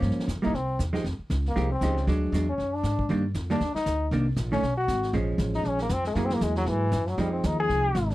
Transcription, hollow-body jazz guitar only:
X:1
M:4/4
L:1/8
Q:"Swing" 1/4=235
K:Cphr
V:1 name="Hollow-body jazz guitar"
[F,B,D]2 z [G,B,=E] z3 [F,A,_EG] | z4 [F,A,EG] z [F,A,EG] z | [^F,^G,=D]2 [F,G,D] z4 z | [E,G,B,=D] z2 [E,G,B,D] z4 |
[E,B,=D] z2 [E,=A,_D] z4 | [F,A,D]4- [F,A,D] z3 | [_G,B,_FA]4- [G,B,FA] z3 | [F,A,E]4- [F,A,E] z3 |]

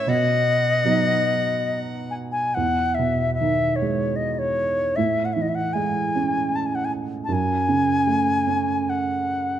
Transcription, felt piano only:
X:1
M:3/4
L:1/8
Q:1/4=76
K:E
V:1 name="Felt piano" clef=bass
B,,2 [F,B,D]4 | E,, B,, D, G,3 | A,, E, G, C3 | F,, C, A, C3 |]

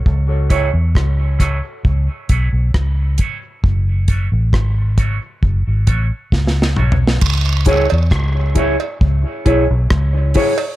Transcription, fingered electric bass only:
X:1
M:4/4
L:1/16
Q:1/4=67
K:C#m
V:1 name="Fingered electric bass" clef=bass
C,,3 E,, C,,3 z C,, z B,,, B,,, C,,2 z2 | F,,,3 A,,, G,,,3 z F,,, G,,, A,,, z C,,2 B,,,2 | C,,3 E,, C,,3 z C,, z B,,, B,,, C,,2 z2 |]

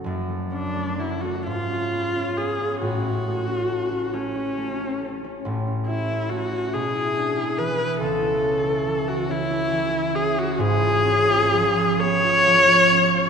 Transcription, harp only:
X:1
M:6/8
L:1/16
Q:3/8=46
K:F#m
V:1 name="Harp"
[F,,,F,,F,A,CF] A, C A, F, A, G,, C B, C B, C | [A,,,A,,] C A, C A, C A, C A, C A, C | [A,,,A,,] C E C A, C B,, E D E E, E | C,, E C E E, E C E E, E C E |
[G,,,G,,] ^E C E ^E, E B, E E, E C E |]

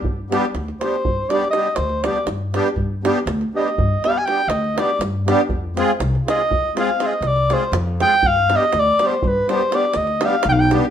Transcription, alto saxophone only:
X:1
M:11/8
L:1/16
Q:1/4=121
K:none
V:1 name="Alto saxophone"
z6 c4 d2 _e2 c2 d2 z4 | z6 _e4 f3/2 _a/2 g2 e2 d2 z4 | z6 _e4 f2 e2 d2 c2 z2 g2 | f2 _e2 d2 c2 B2 c2 d2 e2 f2 g/2 f/2 g z2 |]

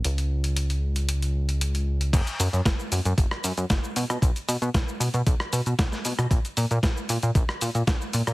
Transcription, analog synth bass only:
X:1
M:4/4
L:1/16
Q:1/4=115
K:A#phr
V:1 name="Analog synth bass" clef=bass
C,,16 | F,,, z F,, F,, F,,, z F,, F,, F,,, z F,, F,, F,,, z B,, B,, | B,,, z B,, B,, B,,, z B,, B,, B,,, z B,, B,, B,,, z B,, B,, | A,,, z A,, A,, A,,, z A,, A,, A,,, z A,, A,, A,,, z A,, A,, |]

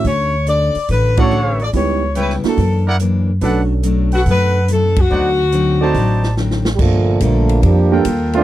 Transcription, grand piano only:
X:1
M:4/4
L:1/8
Q:"Swing" 1/4=142
K:D
V:1 name="Grand piano"
z4 z [A,CEF] z2 | [B,^DEG] z2 [^A,=DEF] z4 | [CDFA]4- [CDFA] z3 | z3 [=C_EFA] z4 |
[K:Gm] z4 z [G,B,DFA] z2 |]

